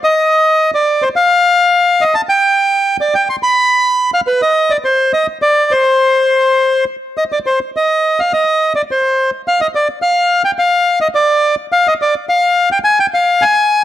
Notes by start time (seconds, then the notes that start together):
0.04 D#5
0.74 D5
1.02 C5
1.16 F5
2.01 D#5
2.15 A5
2.29 G5
3.01 D5
3.15 G5
3.30 C6
3.43 B5
4.14 F5
4.27 B4
4.42 D#5
4.70 D5
4.85 C5
5.13 D#5
5.42 D5
5.71 C5
7.17 D#5
7.32 D5
7.46 C5
7.77 D#5
8.20 F5
8.33 D#5
8.75 D5
8.91 C5
9.48 F5
9.61 D#5
9.75 D5
10.02 F5
10.45 G5
10.59 F5
11.01 D#5
11.15 D5
11.72 F5
11.88 D#5
12.02 D5
12.29 F5
12.72 G5
12.84 G#5
13.00 G5
13.14 F5
13.42 G#5